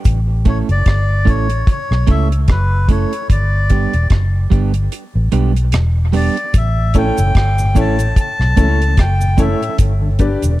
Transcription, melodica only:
0.49 0.58 C#5 medium
0.71 1.30 D5 loud
1.29 1.69 C#5 medium
1.71 2.11 C#5 medium
2.11 2.28 E5 loud
2.51 2.88 B4 medium
2.91 3.28 C#5 medium
3.32 4.08 D5 medium
6.16 6.56 D5 medium
6.57 6.97 E5 medium
6.98 7.80 G5 medium
7.80 8.19 A5 medium
8.20 9.02 A5 loud
9.00 9.41 G5 medium
9.41 9.77 E5 medium

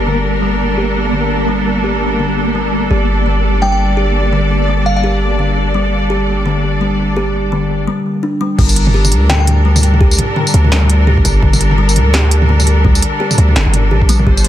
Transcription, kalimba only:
0.07 0.41 D3 medium
0.42 0.59 G3 medium
0.77 1.12 G4 medium
1.13 1.47 D3 medium
1.48 1.66 G3 medium
1.84 2.18 G4 medium
2.19 2.54 D3 medium
2.55 2.72 G3 medium
2.91 3.25 G4 medium
3.26 3.60 D3 medium
3.62 3.79 G3 medium
3.97 4.31 G4 medium
4.33 4.67 D3 medium
4.68 4.85 G3 medium
5.04 5.38 G4 medium
5.39 5.73 D3 medium
5.74 5.92 G3 medium
6.10 6.44 G4 medium
6.46 6.80 D3 medium
6.81 6.98 G3 medium
7.17 7.51 G4 medium
7.52 7.86 D3 medium
7.88 8.05 G3 medium
8.23 8.39 D4 medium
8.41 8.57 G3 loud
8.58 8.76 G3 medium
8.94 9.28 G4 medium
9.30 9.64 D3 medium
9.65 9.82 G3 medium
10.01 10.35 G4 medium
10.36 10.70 D3 medium
10.72 10.89 G3 medium
11.07 11.41 G4 medium
11.43 11.77 D3 medium
11.78 11.95 G3 medium
12.14 12.48 G4 medium
12.49 12.83 D3 medium
12.85 13.02 G3 medium
13.20 13.54 G4 medium
13.56 13.72 D3 medium
13.91 14.08 G4 medium
14.09 14.25 G3 loud
14.27 14.48 G4 medium

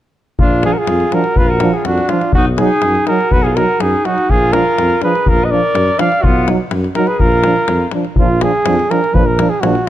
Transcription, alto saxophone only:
0.42 0.64 D4 medium
0.66 0.74 F4 medium
0.72 0.81 F#4 medium
0.79 1.16 F4 medium
1.14 1.40 F#4 medium
1.38 1.53 F4 medium
1.51 1.79 F#4 medium
1.77 1.90 F4 medium
1.88 2.13 D4 medium
2.13 2.36 D4 medium
2.37 2.47 D#4 medium
2.61 3.05 D#4 medium
3.09 3.33 F#4 medium
3.33 3.48 F#4 medium
3.47 3.60 F4 medium
3.59 3.84 F#4 medium
3.82 4.07 D#4 medium
4.07 4.31 D#4 medium
4.30 4.54 F4 medium
4.54 5.03 F4 medium
5.04 5.30 G#4 medium
5.28 5.46 F4 medium
5.45 5.53 B4 medium
5.52 6.01 A#4 medium
5.99 6.26 D5 medium
6.24 6.48 B3 medium
6.97 7.10 F#4 medium
7.08 7.22 G#4 medium
7.21 7.94 F4 medium

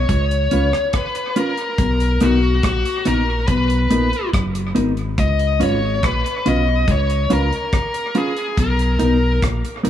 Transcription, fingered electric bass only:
0.10 0.47 C#2 loud
0.53 0.71 C#2 medium
1.79 2.16 B1 loud
2.22 2.59 B1 medium
2.64 2.83 A#1 medium
3.07 3.44 A#1 medium
3.49 3.86 B1 loud
3.92 4.11 A#1 medium
4.34 4.71 F#1 medium
4.77 5.14 G#1 medium
5.19 5.63 C#2 loud
5.62 5.99 G#1 medium
6.04 6.22 A#1 medium
6.47 6.84 B1 medium
6.89 7.26 C#2 loud
7.31 7.50 C#2 medium
8.58 8.96 B1 loud
9.01 9.38 B1 medium
9.43 9.62 A#1 medium
9.87 9.90 A#1 medium

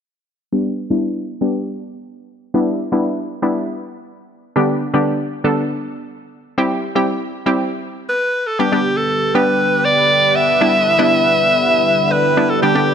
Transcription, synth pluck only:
0.53 0.80 G3 medium
0.53 0.80 B3 medium
0.53 0.80 D4 medium
0.53 0.80 G4 medium
0.90 1.27 G3 medium
0.90 1.27 B3 medium
0.90 1.27 D4 medium
0.90 1.27 E4 medium
1.41 2.14 G3 medium
1.41 2.14 B3 medium
1.41 2.14 D4 medium
1.41 2.14 G4 medium
2.54 2.82 G3 medium
2.54 2.82 B3 medium
2.54 2.82 D4 medium
2.54 2.82 E4 medium
2.92 3.28 G3 medium
2.92 3.29 B3 medium
2.92 3.29 D4 medium
2.92 3.29 E4 medium
3.42 4.15 G3 medium
3.42 4.15 B3 medium
3.42 4.15 D4 medium
3.42 4.15 E4 medium
4.56 4.83 D3 medium
4.56 4.83 G3 medium
4.56 4.83 B3 medium
4.56 4.83 D4 medium
4.56 4.83 G4 medium
4.94 5.30 D3 medium
4.94 5.30 G3 medium
4.94 5.30 B3 medium
4.94 5.30 D4 medium
4.94 5.30 G4 medium
5.44 6.17 D3 medium
5.44 6.17 G3 medium
5.44 6.17 B3 medium
5.44 6.17 D4 medium
5.44 6.17 A4 medium
6.58 6.85 G3 medium
6.58 6.85 C4 medium
6.58 6.85 E4 medium
6.58 6.85 G4 medium
6.95 7.32 G3 medium
6.95 7.32 C4 medium
6.95 7.32 E4 medium
6.95 7.32 G4 medium
7.46 8.19 G3 medium
7.46 8.19 C4 medium
7.46 8.19 E4 medium
7.46 8.19 G4 medium
8.59 8.68 G3 medium
8.59 8.69 B3 medium
8.59 8.69 D4 medium
8.59 8.69 G4 medium
8.72 9.17 G3 medium
8.72 9.18 B3 medium
8.72 9.18 D4 medium
8.72 9.18 G4 medium
9.35 10.08 G3 medium
9.35 10.08 B3 medium
9.35 10.08 D4 medium
9.35 10.08 G4 medium
10.61 10.88 G3 medium
10.61 10.88 B3 medium
10.61 10.88 D4 medium
10.61 10.89 E4 medium
10.99 11.71 G3 medium
10.99 11.72 B3 medium
10.99 11.72 D4 medium
10.99 11.72 E4 loud
12.37 12.56 G3 medium
12.37 12.56 B3 medium
12.37 12.56 D4 medium
12.37 12.56 E4 medium
12.62 12.72 D3 medium
12.62 12.72 G3 medium
12.62 12.72 B3 medium
12.62 12.72 D4 medium
12.62 12.72 G4 medium
12.75 12.94 D3 medium
12.75 12.94 G3 medium
12.75 12.94 B3 medium
12.75 12.94 D4 medium
12.75 12.94 G4 medium

